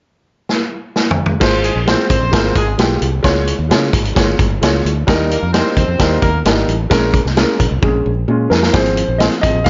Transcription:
0.49 snare
0.96 snare
1.11 floor tom
1.26 floor tom
1.40 fingered electric bass G#1, upright piano G#3 F4 C5, kick, snare, crash
1.63 horn section G#3 G#4, closed hi-hat
1.76 fingered electric bass A#1
1.86 upright piano G#3 F4 C5, horn section C4 C5, snare, closed hi-hat
2.10 fingered electric bass G#1, horn section C4 C5, kick, closed hi-hat
2.21 fingered electric bass A#1
2.31 fingered electric bass G#1, upright piano G#3 F4 A#4, kick, snare, closed hi-hat
2.56 fingered electric bass G#1, horn section G#3 G#4, kick, closed hi-hat
2.78 fingered electric bass B1, upright piano G#3 F4 G4, snare, closed hi-hat
3.02 fingered electric bass C2, closed hi-hat
3.23 fingered electric bass C#2, upright piano G#3 F4 C#5, kick, snare, closed hi-hat
3.47 closed hi-hat
3.59 fingered electric bass D#2
3.69 fingered electric bass C#3, upright piano G#3 F4 C#5, snare, closed hi-hat
3.93 fingered electric bass G#1, kick, closed hi-hat
4.05 closed hi-hat
4.15 fingered electric bass G1, upright piano G#3 F4 C#5, kick, snare, closed hi-hat
4.39 fingered electric bass G1, kick, closed hi-hat
4.61 fingered electric bass C#2, upright piano G#3 F4 C#5, snare, closed hi-hat
4.85 fingered electric bass D2, closed hi-hat
5.07 fingered electric bass D#2, upright piano G3 D#4 A#4, kick, snare, closed hi-hat
5.30 horn section A#3 A#4, closed hi-hat
5.42 fingered electric bass F2
5.53 upright piano G3 D#4 A#4, horn section C4 C5, snare, closed hi-hat
5.76 fingered electric bass D#2, horn section C4 C5, kick, closed hi-hat
5.88 fingered electric bass F2
5.99 fingered electric bass D#2, upright piano G3 D#4 A#4, kick, snare, closed hi-hat
6.22 fingered electric bass D#2, horn section A#3 A#4, kick, closed hi-hat
6.45 fingered electric bass G#1, upright piano G3 D#4 A#4, snare, closed hi-hat
6.68 fingered electric bass A1, closed hi-hat
6.90 fingered electric bass A#1, upright piano G#3 C#4 A#4, kick, snare, closed hi-hat
7.14 kick, closed hi-hat
7.25 fingered electric bass C2, snare
7.36 upright piano G#3 C#4 A#4, snare, closed hi-hat
7.60 fingered electric bass A#1, kick, closed hi-hat
7.71 fingered electric bass C2
7.82 fingered electric bass A#1, upright piano G#3 C#4 G#4, kick
8.06 fingered electric bass A#1
8.28 fingered electric bass A#2, upright piano G#3 C#4 F4
8.50 fingered electric bass F2, grand piano A#4, snare
8.63 snare
8.73 fingered electric bass G#1, upright piano F3 C4 G#4, grand piano C5, kick, snare, closed hi-hat
8.86 closed hi-hat
8.97 closed hi-hat
9.08 fingered electric bass A#1
9.18 upright piano F3 C4 G#4, grand piano D#5, snare, closed hi-hat
9.32 closed hi-hat
9.41 fingered electric bass G#1, upright piano F3 C4 G#4, grand piano D#5, kick, closed hi-hat
9.55 fingered electric bass A#1
9.64 fingered electric bass G#1, upright piano F3 C4, grand piano F5, kick, snare, closed hi-hat

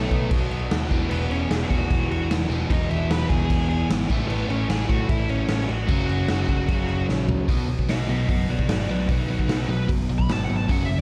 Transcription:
Already playing: distorted electric guitar B2 F#3 B3, lead electric guitar A3 A4
0.11 picked electric bass B1, kick, crash
0.31 picked electric bass B1, distorted electric guitar B2 F#3, kick, crash
0.35 distorted electric guitar B3
0.51 picked electric bass B1, crash
0.71 picked electric bass D#2, snare, crash
0.90 picked electric bass E1, distorted electric guitar E2 B2 E3, kick, crash
1.09 picked electric bass E1, lead electric guitar B3 B4, crash
1.31 picked electric bass E1, lead electric guitar C#4 C#5, crash
1.50 picked electric bass E1, lead electric guitar G#4 G#5, snare, crash
1.69 picked electric bass E1, distorted electric guitar E2 B2 E3, lead electric guitar F#4 F#5, kick, crash
1.91 picked electric bass E1, kick, crash
2.10 picked electric bass E1, lead electric guitar F#4 F#5, crash
2.30 picked electric bass E1, snare, crash
2.48 picked electric bass E1, distorted electric guitar E2 B2, crash
2.53 distorted electric guitar E3
2.70 picked electric bass E1, lead electric guitar D#4 D#5, kick, crash
2.90 picked electric bass E1, lead electric guitar E4 E5, crash
3.10 picked electric bass E1, lead electric guitar B4 B5, snare, crash
3.29 picked electric bass E1, distorted electric guitar E2 B2 E3, lead electric guitar G#4 G#5, kick, crash
3.50 picked electric bass E1, kick, crash
3.69 picked electric bass E1, lead electric guitar G#4 G#5, crash
3.89 picked electric bass G#1, snare, crash
4.09 picked electric bass A1, distorted electric guitar A2 E3 A3, kick, crash
4.28 picked electric bass A1, lead electric guitar B3 B4, crash
4.49 picked electric bass A1, lead electric guitar C#4 C#5, crash
4.69 picked electric bass A1, lead electric guitar G#4 G#5, snare, crash
4.89 picked electric bass A1, distorted electric guitar A2 E3 A3, lead electric guitar F#4 F#5, kick, crash
5.09 picked electric bass A1, lead electric guitar E4 E5, kick, crash
5.29 picked electric bass A1, lead electric guitar C#4 C#5, crash
5.48 picked electric bass A1, snare, crash
5.69 picked electric bass A1, lead electric guitar F#4 F#5, crash
5.87 picked electric bass F#1, distorted electric guitar F#2 C#3 F#3, kick, crash
6.09 picked electric bass F#1, crash
6.28 picked electric bass F#1, snare, crash
6.49 picked electric bass F#1, kick, crash
6.67 picked electric bass F#1, distorted electric guitar F#2 C#3, kick, crash
6.72 distorted electric guitar F#3
6.88 picked electric bass F#1, crash
7.09 picked electric bass A#1, snare
7.29 floor tom
7.48 picked electric bass B1, distorted electric guitar B2 F#3 B3, kick, open hi-hat
7.69 picked electric bass B1, distorted electric guitar B2 F#3
7.79 kick
7.89 picked electric bass B1, distorted electric guitar B2 F#3, lead electric guitar D#5 F#5, snare, open hi-hat
8.08 picked electric bass B1, distorted electric guitar B2 F#3, lead electric guitar D#5 F#5
8.29 picked electric bass F#1, distorted electric guitar B2 F#3, lead electric guitar D#5 F#5, kick, open hi-hat
8.48 picked electric bass B1, distorted electric guitar B2 F#3, lead electric guitar B4 D5
8.59 kick
8.68 picked electric bass G#1, distorted electric guitar B2 F#3, lead electric guitar B4, snare, open hi-hat
8.72 lead electric guitar D5
8.88 picked electric bass B1, distorted electric guitar B2 F#3, lead electric guitar B4 D5
9.08 picked electric bass B1, distorted electric guitar B2 F#3, overdriven electric guitar B3, lead electric guitar D#4 B4, kick, open hi-hat
9.29 picked electric bass B1, distorted electric guitar B2 F#3, lead electric guitar D#4 B4
9.39 kick
9.48 picked electric bass B1, distorted electric guitar B2 F#3, lead electric guitar D#4 B4, snare, open hi-hat
9.68 picked electric bass B1, distorted electric guitar B2 F#3, lead electric guitar B4
9.88 picked electric bass F#1, distorted electric guitar B2 F#3, kick, open hi-hat
10.09 picked electric bass B1, distorted electric guitar B2 F#3
10.18 lead electric guitar B5, kick
10.29 picked electric bass G#1, distorted electric guitar B2 F#3, lead electric guitar A5, snare, open hi-hat
10.44 lead electric guitar F#5
10.50 picked electric bass G#1, distorted electric guitar B2 F#3
10.57 lead electric guitar A5
10.69 picked electric bass F#1, distorted electric guitar F#2 C#3 F#3, lead electric guitar F#5, kick, open hi-hat
10.85 lead electric guitar E5
10.89 picked electric bass F#1, distorted electric guitar F#2 C#3

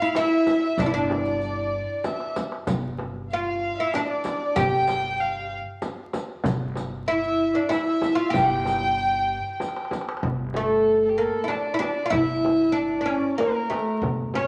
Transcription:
Already playing: violin section F5, violin F5
0.02 oud E4
0.15 oud E4, violin section E5, violin E5, riq, darbuka tek, frame drum
0.47 riq, darbuka tek, frame drum
0.63 violin E5
0.78 upright bass G1, oud D4, violin section D5, violin D5, riq, darbuka dum, frame drum
0.86 oud E4
0.93 oud D4, violin section D5, violin D5
1.10 darbuka tek, frame drum
1.25 riq
1.42 riq, darbuka ka
2.04 violin E5, riq, darbuka tek, frame drum
2.20 darbuka ka
2.36 riq, darbuka tek, frame drum
2.52 darbuka ka
2.67 upright bass G1, riq, frame drum, darbuka dum
2.99 darbuka tek, frame drum
3.30 oud F4, violin section F5, violin F5, riq, darbuka ka
3.78 oud E4, violin section E5
3.93 oud D4, violin section D5, violin D5, riq, darbuka tek, frame drum
4.24 riq, darbuka tek, frame drum
4.56 upright bass G1, oud G4, violin G5, violin section G5, riq, frame drum, darbuka dum
4.87 riq, darbuka tek, frame drum
5.20 violin F5, riq, darbuka ka
5.82 riq, darbuka tek, frame drum
6.13 riq, darbuka tek, frame drum
6.44 upright bass G1, riq, frame drum, darbuka dum
6.76 riq, darbuka tek, frame drum
7.08 oud E4, violin E5, violin section E5, riq
7.55 oud D4, violin section D5, violin D5
7.69 oud E4, violin section E5, violin E5, riq, darbuka tek, frame drum
8.02 riq, darbuka tek, frame drum
8.15 oud F4, violin F5
8.30 upright bass G1, oud G4, violin section G5, frame drum, darbuka dum
8.35 violin G5, riq
8.65 riq, darbuka tek, frame drum
8.82 darbuka ka
8.99 riq
9.60 riq, darbuka tek, frame drum
9.68 darbuka ka
9.76 darbuka tek
9.85 darbuka ka
9.91 riq, darbuka tek, frame drum
10.01 darbuka ka
10.09 darbuka tek
10.17 darbuka ka
10.23 upright bass G1, frame drum, darbuka dum
10.54 oud A3, violin A4, darbuka tek, frame drum
11.04 violin A4
11.09 violin G4
11.17 oud A#3, violin A4
11.44 oud D4 E4
11.49 violin D5, darbuka tek, frame drum
11.74 oud E4
11.79 oud D4, darbuka tek, frame drum
11.83 violin D5
12.06 oud F4
12.10 upright bass G1, oud E4, frame drum, darbuka dum
12.15 violin E5
12.45 darbuka tek, frame drum
12.72 oud D4
12.76 violin D5
13.01 oud D4
13.06 oud C#4
13.38 oud A#3, violin A#4, darbuka tek, frame drum
13.70 oud A3, darbuka tek, frame drum
14.02 upright bass G1, frame drum, darbuka dum
14.34 oud C#4, violin C#5, frame drum

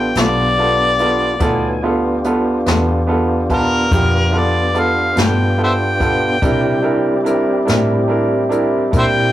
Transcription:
Already playing: fingered electric bass A1, tonewheel organ B3 D4 F4 G4, harmonica G5
0.15 fingered electric bass B1, upright piano B3 F4 A4, snare, closed hi-hat
0.20 harmonica D5
0.58 upright piano B3 F4 A4
0.99 upright piano B3 F4 A4, closed hi-hat
1.40 fingered electric bass D2, tonewheel organ F#3 B3 D#4 G#5, upright piano B3 F4 A4, kick, closed hi-hat
1.81 tonewheel organ B3 D4 F4 G4, upright piano B3 F4 A4
2.24 upright piano B3 F4 A4, closed hi-hat
2.66 fingered electric bass E2, upright piano B3 F4 A4, snare, closed hi-hat
3.07 upright piano B3 F4 A4
3.50 upright piano B3 F4 A5, harmonica A#4, kick, closed hi-hat
3.91 fingered electric bass F2, upright piano B3 F4 G4, kick, closed hi-hat
4.32 upright piano B3 F4 A4
4.38 harmonica D5
4.74 upright piano B3 F4 A4, closed hi-hat
4.79 harmonica F5
5.16 fingered electric bass G2, upright piano B3 F4 A4, snare, closed hi-hat
5.21 harmonica G5
5.58 upright piano B3 F4 A4
5.63 harmonica C5 E5 G5
5.99 upright piano B3 F4 A4, kick, closed hi-hat
6.42 fingered electric bass C3, tonewheel organ G3 C4 E4 G4, upright piano D4 E4 A#4, kick, closed hi-hat
6.82 upright piano D4 E4 A#4
7.24 upright piano D4 E4 A#4, closed hi-hat
7.65 fingered electric bass A2, upright piano D4 E4 A#4, closed hi-hat
7.69 snare
8.08 upright piano D4 E4 A#4
8.49 upright piano D4 E4 A#4, closed hi-hat
8.91 fingered electric bass A#2, upright piano D4 E4 A#4, kick, closed hi-hat
8.98 harmonica C5 E5 G5

